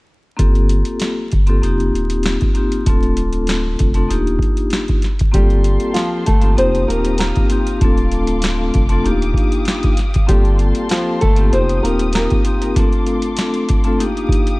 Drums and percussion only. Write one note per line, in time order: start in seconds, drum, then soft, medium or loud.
0.39 kick loud
0.39 closed hi-hat loud
0.55 closed hi-hat soft
0.69 closed hi-hat medium
0.85 closed hi-hat soft
1.00 snare loud
1.00 closed hi-hat loud
1.32 kick medium
1.32 closed hi-hat medium
1.47 closed hi-hat soft
1.63 closed hi-hat loud
1.80 closed hi-hat soft
1.95 closed hi-hat medium
2.10 closed hi-hat medium
2.23 snare loud
2.23 closed hi-hat medium
2.41 kick medium
2.41 closed hi-hat soft
2.55 closed hi-hat medium
2.72 closed hi-hat medium
2.86 kick loud
2.86 closed hi-hat loud
3.03 closed hi-hat soft
3.17 closed hi-hat medium
3.33 closed hi-hat soft
3.47 snare loud
3.47 closed hi-hat medium
3.79 kick medium
3.79 closed hi-hat medium
3.94 closed hi-hat medium
4.11 closed hi-hat medium
4.27 closed hi-hat soft
4.39 kick loud
4.39 closed hi-hat medium
4.57 closed hi-hat medium
4.70 snare loud
4.70 closed hi-hat medium
4.88 kick loud
4.88 closed hi-hat soft
5.02 snare soft
5.02 closed hi-hat medium
5.19 kick loud
5.19 closed hi-hat medium
5.34 kick loud
5.34 closed hi-hat loud
5.50 closed hi-hat soft
5.64 closed hi-hat medium
5.80 closed hi-hat soft
5.94 snare loud
5.94 closed hi-hat loud
6.26 kick loud
6.26 closed hi-hat medium
6.42 closed hi-hat medium
6.58 closed hi-hat loud
6.75 closed hi-hat soft
6.90 closed hi-hat medium
7.05 closed hi-hat medium
7.18 snare loud
7.18 closed hi-hat medium
7.35 kick loud
7.35 closed hi-hat soft
7.50 closed hi-hat medium
7.67 closed hi-hat medium
7.81 kick loud
7.81 closed hi-hat loud
7.97 closed hi-hat soft
8.12 closed hi-hat medium
8.27 closed hi-hat soft
8.42 snare loud
8.42 closed hi-hat loud
8.74 kick loud
8.74 closed hi-hat medium
8.89 closed hi-hat medium
9.06 closed hi-hat loud
9.22 closed hi-hat soft
9.34 kick loud
9.34 closed hi-hat medium
9.52 closed hi-hat medium
9.65 snare loud
9.65 closed hi-hat medium
9.83 kick loud
9.83 closed hi-hat soft
9.97 snare soft
9.97 closed hi-hat medium
10.14 kick loud
10.14 closed hi-hat medium
10.29 kick loud
10.29 closed hi-hat loud
10.45 closed hi-hat soft
10.59 closed hi-hat medium
10.75 closed hi-hat medium
10.89 snare loud
10.89 closed hi-hat loud
11.21 kick medium
11.21 closed hi-hat medium
11.36 closed hi-hat medium
11.53 closed hi-hat loud
11.69 closed hi-hat soft
11.85 closed hi-hat medium
11.99 closed hi-hat medium
12.13 snare loud
12.13 closed hi-hat medium
12.30 kick loud
12.30 closed hi-hat soft
12.45 closed hi-hat medium
12.62 closed hi-hat medium
12.76 kick loud
12.76 closed hi-hat loud
12.92 closed hi-hat soft
13.06 closed hi-hat medium
13.22 closed hi-hat medium
13.37 snare loud
13.37 closed hi-hat loud
13.54 closed hi-hat soft
13.69 kick loud
13.69 closed hi-hat medium
13.84 closed hi-hat medium
14.00 closed hi-hat loud
14.17 closed hi-hat soft
14.29 kick loud
14.29 closed hi-hat medium
14.47 closed hi-hat medium